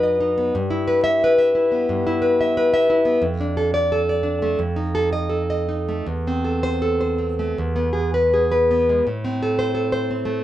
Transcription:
0.00 0.51 F#2 medium
0.00 0.19 D#4 medium
0.00 0.55 B4 medium
0.00 0.54 D#5 medium
0.21 0.55 D#4 medium
0.38 0.55 B3 medium
0.55 1.86 G2 medium
0.71 1.54 E4 medium
0.88 1.03 B4 medium
1.04 1.32 E5 medium
1.24 2.21 B4 medium
1.38 2.39 E5 medium
1.55 2.06 E4 medium
1.72 2.73 B3 medium
1.90 3.20 G2 medium
2.07 2.89 E4 medium
2.22 2.56 B4 medium
2.41 2.73 E5 medium
2.57 3.24 B4 medium
2.74 3.24 E5 medium
2.90 3.24 E4 medium
3.05 3.23 B3 medium
3.22 4.54 F2 medium
3.41 4.22 D4 medium
3.57 3.74 A4 medium
3.74 4.01 D5 medium
3.92 4.60 A4 medium
4.09 4.60 D5 medium
4.23 4.58 D4 medium
4.42 4.59 A3 medium
4.59 6.00 F2 medium
4.76 5.67 D#4 medium
4.95 5.12 A4 medium
5.12 5.42 D#5 medium
5.29 6.04 A4 medium
5.50 6.05 D#5 medium
5.68 6.05 D#4 medium
5.88 6.06 A3 medium
6.06 7.53 E2 medium
6.27 7.17 C4 medium
6.44 6.81 A4 medium
6.63 6.93 C5 medium
6.82 7.57 A4 medium
7.01 7.57 C5 medium
7.19 7.56 C4 medium
7.39 7.57 A3 medium
7.58 9.01 E2 medium
7.76 8.70 B3 medium
7.93 8.14 G#4 medium
8.14 8.43 B4 medium
8.34 9.05 G#4 medium
8.52 9.05 B4 medium
8.71 9.05 B3 medium
8.89 9.05 G#3 medium
9.07 10.40 A2 medium
9.25 10.09 C4 medium
9.42 9.73 A4 medium
9.59 9.85 C5 medium
9.74 10.43 A4 medium
9.92 10.44 C5 medium
10.10 10.44 C4 medium
10.25 10.43 A3 medium

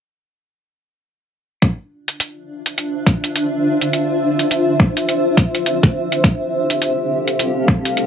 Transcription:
1.62 7.15 D4 medium
1.62 kick loud
1.62 closed hi-hat medium
1.69 7.07 F4 medium
2.08 closed hi-hat medium
2.15 6.24 E5 medium
2.20 closed hi-hat medium
2.29 8.06 C5 medium
2.66 closed hi-hat soft
2.78 closed hi-hat medium
3.07 kick medium
3.07 closed hi-hat medium
3.24 closed hi-hat medium
3.36 closed hi-hat medium
3.81 closed hi-hat medium
3.93 closed hi-hat medium
4.39 closed hi-hat medium
4.51 closed hi-hat medium
4.80 kick loud
4.97 closed hi-hat medium
5.09 closed hi-hat medium
5.37 kick loud
5.37 closed hi-hat medium
5.55 closed hi-hat medium
5.66 closed hi-hat medium
5.83 kick medium
6.12 closed hi-hat soft
6.24 8.06 C4 medium
6.24 kick loud
6.24 closed hi-hat medium
6.31 8.06 G4 medium
6.66 8.06 A4 medium
6.70 closed hi-hat medium
6.82 closed hi-hat medium
6.87 8.06 F5 medium
7.28 closed hi-hat soft
7.39 closed hi-hat medium
7.68 kick loud
7.68 closed hi-hat medium
7.85 closed hi-hat medium
7.97 closed hi-hat medium

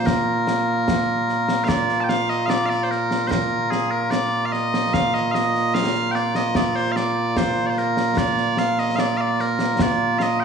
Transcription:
0.00 10.45 A#2 medium
0.00 10.45 A#3 medium
0.00 10.45 F4 medium
0.06 1.64 A#4 medium
0.06 concert bass drum medium
0.06 snare medium
0.47 snare medium
0.88 concert bass drum medium
0.88 snare medium
1.29 snare soft
1.49 snare medium
1.64 1.68 F5 medium
1.68 2.01 D5 medium
1.68 concert bass drum medium
1.68 snare loud
1.89 snare soft
2.00 2.09 G5 medium
2.00 2.04 A5 medium
2.09 2.30 F5 loud
2.09 snare medium
2.29 2.46 D#5 loud
2.29 snare soft
2.46 2.66 D5 loud
2.46 2.49 F5 loud
2.46 snare medium
2.66 2.84 D5 loud
2.66 2.69 F5 loud
2.71 snare soft
2.84 2.91 C5 medium
2.91 3.27 A#4 medium
2.91 snare soft
3.11 snare medium
3.27 3.71 A#4 medium
3.27 3.30 C5 medium
3.31 concert bass drum medium
3.31 snare medium
3.71 3.91 G#4 medium
3.71 snare medium
3.91 4.11 A#4 medium
4.11 4.45 D5 loud
4.11 snare medium
4.45 4.52 F5 medium
4.52 4.94 D#5 loud
4.52 snare soft
4.74 snare medium
4.94 5.14 F5 loud
4.94 concert bass drum medium
4.94 snare medium
5.14 5.31 D#5 loud
5.14 snare soft
5.31 5.74 D#5 loud
5.31 5.35 F5 loud
5.31 snare medium
5.55 snare soft
5.74 6.11 F5 loud
5.74 snare loud
5.95 snare soft
6.11 6.36 D5 loud
6.11 6.15 G5 loud
6.11 snare soft
6.35 6.56 D#5 medium
6.35 snare medium
6.55 6.76 D5 medium
6.55 concert bass drum medium
6.55 snare medium
6.76 6.92 C5 loud
6.92 6.96 F5 medium
6.96 7.37 D5 medium
6.96 snare medium
7.37 7.66 C5 loud
7.37 concert bass drum medium
7.37 snare loud
7.66 7.78 C5 medium
7.66 7.70 D5 medium
7.77 8.18 A#4 medium
7.77 snare soft
7.97 snare medium
8.17 8.59 D5 medium
8.17 concert bass drum medium
8.17 snare loud
8.37 snare soft
8.57 8.79 F5 medium
8.57 snare medium
8.78 8.96 D#5 loud
8.78 snare soft
8.96 9.17 D5 loud
8.96 8.99 F5 loud
8.96 snare loud
9.17 9.41 D5 medium
9.17 9.21 F5 medium
9.39 9.82 A#4 medium
9.39 snare soft
9.59 snare medium
9.79 10.19 D5 medium
9.79 concert bass drum medium
9.79 snare loud
10.19 10.40 D#5 medium
10.19 10.23 F5 medium
10.19 snare medium
10.40 10.43 G5 loud

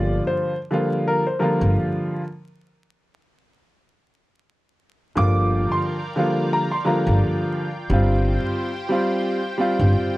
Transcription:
0.00 0.17 G1 loud
0.00 0.50 D3 medium
0.00 0.51 F3 medium
0.00 0.51 G3 medium
0.00 0.51 A#3 medium
0.00 0.52 F4 loud
0.00 0.22 D5 loud
0.27 0.57 C5 medium
0.71 1.21 D3 medium
0.71 1.21 F3 medium
0.71 1.22 G3 medium
0.71 1.22 A#3 medium
0.71 1.22 F4 loud
1.08 1.25 A#4 medium
1.27 1.40 C5 medium
1.39 2.20 D3 loud
1.39 2.21 F3 medium
1.39 2.21 G3 medium
1.39 2.21 A#3 medium
1.39 2.22 F4 loud
1.39 1.71 A#4 medium
1.61 1.74 G1 medium
5.15 5.62 G1 loud
5.15 5.96 D3 medium
5.15 5.96 F3 medium
5.15 5.96 G3 medium
5.15 5.97 A#3 medium
5.15 10.18 F4 medium
5.15 5.97 F4 loud
5.15 7.87 A#4 medium
5.15 7.87 D5 medium
5.15 10.18 G5 loud
5.15 5.67 D6 loud
5.72 6.02 C6 medium
6.16 6.66 D3 loud
6.16 6.67 F3 medium
6.16 6.67 G3 medium
6.16 6.67 A#3 medium
6.16 6.68 F4 loud
6.53 6.70 A#5 medium
6.71 6.85 C6 medium
6.85 7.66 D3 loud
6.85 7.66 F3 medium
6.85 7.66 G3 medium
6.85 7.67 A#3 medium
6.85 7.67 F4 loud
6.85 7.17 A#5 medium
7.07 7.19 G1 medium
7.89 8.35 G1 loud
7.89 8.69 G3 medium
7.89 8.70 C4 medium
7.89 10.18 G4 medium
7.89 10.18 C5 medium
7.93 8.71 F4 loud
8.89 9.39 G3 loud
8.89 9.40 C4 medium
8.89 9.40 F4 medium
9.58 10.18 G3 loud
9.58 10.18 C4 medium
9.58 10.18 F4 loud
9.79 9.92 G1 loud

